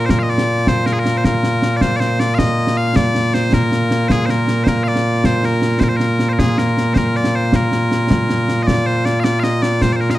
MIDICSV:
0, 0, Header, 1, 3, 480
1, 0, Start_track
1, 0, Key_signature, -2, "major"
1, 0, Tempo, 380952
1, 848, Time_signature, 6, 3, 24, 8
1, 12834, End_track
2, 0, Start_track
2, 0, Title_t, "Bagpipes"
2, 0, Program_c, 0, 109
2, 0, Note_on_c, 0, 46, 89
2, 0, Note_on_c, 0, 58, 89
2, 0, Note_on_c, 0, 65, 89
2, 68, Note_on_c, 0, 72, 87
2, 123, Note_off_c, 0, 72, 0
2, 123, Note_on_c, 0, 70, 87
2, 238, Note_on_c, 0, 77, 78
2, 239, Note_off_c, 0, 70, 0
2, 284, Note_off_c, 0, 77, 0
2, 285, Note_on_c, 0, 75, 78
2, 375, Note_off_c, 0, 75, 0
2, 375, Note_on_c, 0, 74, 98
2, 861, Note_off_c, 0, 74, 0
2, 861, Note_on_c, 0, 72, 102
2, 1082, Note_off_c, 0, 72, 0
2, 1082, Note_on_c, 0, 70, 90
2, 1173, Note_off_c, 0, 70, 0
2, 1173, Note_on_c, 0, 68, 74
2, 1256, Note_off_c, 0, 68, 0
2, 1256, Note_on_c, 0, 70, 96
2, 1477, Note_off_c, 0, 70, 0
2, 1477, Note_on_c, 0, 72, 70
2, 1569, Note_off_c, 0, 72, 0
2, 1569, Note_on_c, 0, 70, 92
2, 2224, Note_off_c, 0, 70, 0
2, 2224, Note_on_c, 0, 74, 75
2, 2287, Note_off_c, 0, 74, 0
2, 2287, Note_on_c, 0, 72, 106
2, 2475, Note_off_c, 0, 72, 0
2, 2475, Note_on_c, 0, 74, 89
2, 2521, Note_off_c, 0, 74, 0
2, 2521, Note_on_c, 0, 72, 89
2, 2770, Note_off_c, 0, 72, 0
2, 2770, Note_on_c, 0, 74, 100
2, 2953, Note_on_c, 0, 77, 104
2, 2954, Note_off_c, 0, 74, 0
2, 3003, Note_off_c, 0, 77, 0
2, 3003, Note_on_c, 0, 75, 104
2, 3490, Note_off_c, 0, 75, 0
2, 3490, Note_on_c, 0, 77, 105
2, 3727, Note_off_c, 0, 77, 0
2, 3727, Note_on_c, 0, 74, 106
2, 4209, Note_off_c, 0, 74, 0
2, 4209, Note_on_c, 0, 72, 102
2, 4452, Note_off_c, 0, 72, 0
2, 4452, Note_on_c, 0, 70, 96
2, 5141, Note_off_c, 0, 70, 0
2, 5141, Note_on_c, 0, 72, 96
2, 5183, Note_off_c, 0, 72, 0
2, 5183, Note_on_c, 0, 68, 96
2, 5364, Note_off_c, 0, 68, 0
2, 5364, Note_on_c, 0, 72, 82
2, 5415, Note_off_c, 0, 72, 0
2, 5415, Note_on_c, 0, 70, 82
2, 5842, Note_off_c, 0, 70, 0
2, 5842, Note_on_c, 0, 72, 88
2, 5895, Note_off_c, 0, 72, 0
2, 5895, Note_on_c, 0, 70, 88
2, 6092, Note_off_c, 0, 70, 0
2, 6092, Note_on_c, 0, 77, 100
2, 6147, Note_off_c, 0, 77, 0
2, 6147, Note_on_c, 0, 74, 100
2, 6622, Note_off_c, 0, 74, 0
2, 6622, Note_on_c, 0, 72, 97
2, 6867, Note_off_c, 0, 72, 0
2, 6867, Note_on_c, 0, 70, 89
2, 7300, Note_off_c, 0, 70, 0
2, 7300, Note_on_c, 0, 72, 82
2, 7350, Note_off_c, 0, 72, 0
2, 7350, Note_on_c, 0, 70, 82
2, 7418, Note_off_c, 0, 70, 0
2, 7418, Note_on_c, 0, 72, 81
2, 7512, Note_off_c, 0, 72, 0
2, 7512, Note_on_c, 0, 70, 89
2, 7926, Note_off_c, 0, 70, 0
2, 7926, Note_on_c, 0, 72, 70
2, 7972, Note_off_c, 0, 72, 0
2, 7972, Note_on_c, 0, 70, 70
2, 8054, Note_off_c, 0, 70, 0
2, 8054, Note_on_c, 0, 68, 86
2, 8299, Note_off_c, 0, 68, 0
2, 8299, Note_on_c, 0, 70, 81
2, 8743, Note_on_c, 0, 72, 93
2, 8744, Note_off_c, 0, 70, 0
2, 8786, Note_off_c, 0, 72, 0
2, 8786, Note_on_c, 0, 70, 93
2, 9025, Note_off_c, 0, 70, 0
2, 9025, Note_on_c, 0, 74, 101
2, 9267, Note_off_c, 0, 74, 0
2, 9267, Note_on_c, 0, 72, 87
2, 9518, Note_off_c, 0, 72, 0
2, 9518, Note_on_c, 0, 70, 83
2, 10870, Note_off_c, 0, 70, 0
2, 10870, Note_on_c, 0, 75, 76
2, 10927, Note_off_c, 0, 75, 0
2, 10927, Note_on_c, 0, 74, 106
2, 11168, Note_off_c, 0, 74, 0
2, 11168, Note_on_c, 0, 72, 88
2, 11407, Note_off_c, 0, 72, 0
2, 11407, Note_on_c, 0, 74, 88
2, 11589, Note_off_c, 0, 74, 0
2, 11589, Note_on_c, 0, 77, 100
2, 11641, Note_off_c, 0, 77, 0
2, 11641, Note_on_c, 0, 74, 100
2, 11837, Note_off_c, 0, 74, 0
2, 11837, Note_on_c, 0, 77, 105
2, 11885, Note_off_c, 0, 77, 0
2, 11885, Note_on_c, 0, 75, 105
2, 12126, Note_off_c, 0, 75, 0
2, 12126, Note_on_c, 0, 74, 95
2, 12373, Note_off_c, 0, 74, 0
2, 12373, Note_on_c, 0, 72, 98
2, 12508, Note_off_c, 0, 72, 0
2, 12508, Note_on_c, 0, 74, 61
2, 12551, Note_off_c, 0, 74, 0
2, 12551, Note_on_c, 0, 72, 61
2, 12604, Note_off_c, 0, 72, 0
2, 12604, Note_on_c, 0, 70, 84
2, 12728, Note_off_c, 0, 70, 0
2, 12728, Note_on_c, 0, 77, 70
2, 12784, Note_off_c, 0, 77, 0
2, 12784, Note_on_c, 0, 75, 70
2, 12834, Note_off_c, 0, 46, 0
2, 12834, Note_off_c, 0, 58, 0
2, 12834, Note_off_c, 0, 65, 0
2, 12834, Note_off_c, 0, 75, 0
2, 12834, End_track
3, 0, Start_track
3, 0, Title_t, "Drums"
3, 116, Note_on_c, 9, 35, 52
3, 116, Note_on_c, 9, 38, 93
3, 242, Note_off_c, 9, 35, 0
3, 242, Note_off_c, 9, 38, 0
3, 359, Note_on_c, 9, 38, 31
3, 478, Note_off_c, 9, 38, 0
3, 478, Note_on_c, 9, 38, 84
3, 604, Note_off_c, 9, 38, 0
3, 726, Note_on_c, 9, 38, 30
3, 846, Note_off_c, 9, 38, 0
3, 846, Note_on_c, 9, 35, 56
3, 846, Note_on_c, 9, 38, 92
3, 972, Note_off_c, 9, 35, 0
3, 972, Note_off_c, 9, 38, 0
3, 1086, Note_on_c, 9, 38, 82
3, 1209, Note_off_c, 9, 38, 0
3, 1209, Note_on_c, 9, 38, 30
3, 1326, Note_off_c, 9, 38, 0
3, 1326, Note_on_c, 9, 38, 71
3, 1451, Note_off_c, 9, 38, 0
3, 1451, Note_on_c, 9, 38, 28
3, 1568, Note_off_c, 9, 38, 0
3, 1568, Note_on_c, 9, 35, 55
3, 1568, Note_on_c, 9, 38, 95
3, 1694, Note_off_c, 9, 35, 0
3, 1694, Note_off_c, 9, 38, 0
3, 1807, Note_on_c, 9, 38, 81
3, 1933, Note_off_c, 9, 38, 0
3, 2046, Note_on_c, 9, 38, 79
3, 2172, Note_off_c, 9, 38, 0
3, 2284, Note_on_c, 9, 35, 51
3, 2284, Note_on_c, 9, 38, 85
3, 2410, Note_off_c, 9, 35, 0
3, 2410, Note_off_c, 9, 38, 0
3, 2527, Note_on_c, 9, 38, 74
3, 2653, Note_off_c, 9, 38, 0
3, 2767, Note_on_c, 9, 38, 78
3, 2893, Note_off_c, 9, 38, 0
3, 3006, Note_on_c, 9, 35, 53
3, 3006, Note_on_c, 9, 38, 101
3, 3132, Note_off_c, 9, 35, 0
3, 3132, Note_off_c, 9, 38, 0
3, 3249, Note_on_c, 9, 38, 29
3, 3365, Note_off_c, 9, 38, 0
3, 3365, Note_on_c, 9, 38, 78
3, 3491, Note_off_c, 9, 38, 0
3, 3608, Note_on_c, 9, 38, 30
3, 3728, Note_off_c, 9, 38, 0
3, 3728, Note_on_c, 9, 35, 58
3, 3728, Note_on_c, 9, 38, 97
3, 3854, Note_off_c, 9, 35, 0
3, 3854, Note_off_c, 9, 38, 0
3, 3966, Note_on_c, 9, 38, 75
3, 4088, Note_off_c, 9, 38, 0
3, 4088, Note_on_c, 9, 38, 30
3, 4208, Note_off_c, 9, 38, 0
3, 4208, Note_on_c, 9, 38, 71
3, 4328, Note_off_c, 9, 38, 0
3, 4328, Note_on_c, 9, 38, 27
3, 4443, Note_off_c, 9, 38, 0
3, 4443, Note_on_c, 9, 35, 58
3, 4443, Note_on_c, 9, 38, 88
3, 4569, Note_off_c, 9, 35, 0
3, 4569, Note_off_c, 9, 38, 0
3, 4682, Note_on_c, 9, 38, 80
3, 4808, Note_off_c, 9, 38, 0
3, 4921, Note_on_c, 9, 38, 79
3, 5047, Note_off_c, 9, 38, 0
3, 5160, Note_on_c, 9, 35, 55
3, 5160, Note_on_c, 9, 38, 86
3, 5286, Note_off_c, 9, 35, 0
3, 5286, Note_off_c, 9, 38, 0
3, 5401, Note_on_c, 9, 38, 71
3, 5527, Note_off_c, 9, 38, 0
3, 5639, Note_on_c, 9, 38, 69
3, 5765, Note_off_c, 9, 38, 0
3, 5879, Note_on_c, 9, 35, 54
3, 5879, Note_on_c, 9, 38, 96
3, 6005, Note_off_c, 9, 35, 0
3, 6005, Note_off_c, 9, 38, 0
3, 6117, Note_on_c, 9, 38, 28
3, 6243, Note_off_c, 9, 38, 0
3, 6243, Note_on_c, 9, 38, 73
3, 6369, Note_off_c, 9, 38, 0
3, 6488, Note_on_c, 9, 38, 28
3, 6600, Note_off_c, 9, 38, 0
3, 6600, Note_on_c, 9, 35, 53
3, 6600, Note_on_c, 9, 38, 88
3, 6726, Note_off_c, 9, 35, 0
3, 6726, Note_off_c, 9, 38, 0
3, 6843, Note_on_c, 9, 38, 68
3, 6961, Note_off_c, 9, 38, 0
3, 6961, Note_on_c, 9, 38, 28
3, 7078, Note_off_c, 9, 38, 0
3, 7078, Note_on_c, 9, 38, 74
3, 7200, Note_off_c, 9, 38, 0
3, 7200, Note_on_c, 9, 38, 28
3, 7318, Note_off_c, 9, 38, 0
3, 7318, Note_on_c, 9, 35, 55
3, 7318, Note_on_c, 9, 38, 97
3, 7444, Note_off_c, 9, 35, 0
3, 7444, Note_off_c, 9, 38, 0
3, 7558, Note_on_c, 9, 38, 80
3, 7684, Note_off_c, 9, 38, 0
3, 7802, Note_on_c, 9, 38, 77
3, 7928, Note_off_c, 9, 38, 0
3, 8048, Note_on_c, 9, 35, 59
3, 8048, Note_on_c, 9, 38, 85
3, 8174, Note_off_c, 9, 35, 0
3, 8174, Note_off_c, 9, 38, 0
3, 8288, Note_on_c, 9, 38, 82
3, 8414, Note_off_c, 9, 38, 0
3, 8415, Note_on_c, 9, 38, 27
3, 8536, Note_off_c, 9, 38, 0
3, 8536, Note_on_c, 9, 38, 72
3, 8662, Note_off_c, 9, 38, 0
3, 8768, Note_on_c, 9, 35, 57
3, 8768, Note_on_c, 9, 38, 99
3, 8894, Note_off_c, 9, 35, 0
3, 8894, Note_off_c, 9, 38, 0
3, 9010, Note_on_c, 9, 38, 34
3, 9124, Note_off_c, 9, 38, 0
3, 9124, Note_on_c, 9, 38, 85
3, 9250, Note_off_c, 9, 38, 0
3, 9367, Note_on_c, 9, 38, 32
3, 9482, Note_off_c, 9, 38, 0
3, 9482, Note_on_c, 9, 35, 59
3, 9482, Note_on_c, 9, 38, 87
3, 9608, Note_off_c, 9, 35, 0
3, 9608, Note_off_c, 9, 38, 0
3, 9724, Note_on_c, 9, 38, 77
3, 9848, Note_off_c, 9, 38, 0
3, 9848, Note_on_c, 9, 38, 31
3, 9972, Note_off_c, 9, 38, 0
3, 9972, Note_on_c, 9, 38, 78
3, 10092, Note_off_c, 9, 38, 0
3, 10092, Note_on_c, 9, 38, 25
3, 10210, Note_off_c, 9, 38, 0
3, 10210, Note_on_c, 9, 35, 57
3, 10210, Note_on_c, 9, 38, 106
3, 10336, Note_off_c, 9, 35, 0
3, 10336, Note_off_c, 9, 38, 0
3, 10451, Note_on_c, 9, 38, 86
3, 10577, Note_off_c, 9, 38, 0
3, 10690, Note_on_c, 9, 38, 77
3, 10816, Note_off_c, 9, 38, 0
3, 10932, Note_on_c, 9, 35, 56
3, 10932, Note_on_c, 9, 38, 96
3, 11058, Note_off_c, 9, 35, 0
3, 11058, Note_off_c, 9, 38, 0
3, 11411, Note_on_c, 9, 38, 64
3, 11537, Note_off_c, 9, 38, 0
3, 11647, Note_on_c, 9, 38, 88
3, 11773, Note_off_c, 9, 38, 0
3, 11886, Note_on_c, 9, 38, 80
3, 12012, Note_off_c, 9, 38, 0
3, 12129, Note_on_c, 9, 38, 76
3, 12244, Note_off_c, 9, 38, 0
3, 12244, Note_on_c, 9, 38, 28
3, 12365, Note_off_c, 9, 38, 0
3, 12365, Note_on_c, 9, 35, 55
3, 12365, Note_on_c, 9, 38, 82
3, 12491, Note_off_c, 9, 35, 0
3, 12491, Note_off_c, 9, 38, 0
3, 12601, Note_on_c, 9, 38, 26
3, 12721, Note_off_c, 9, 38, 0
3, 12721, Note_on_c, 9, 38, 73
3, 12834, Note_off_c, 9, 38, 0
3, 12834, End_track
0, 0, End_of_file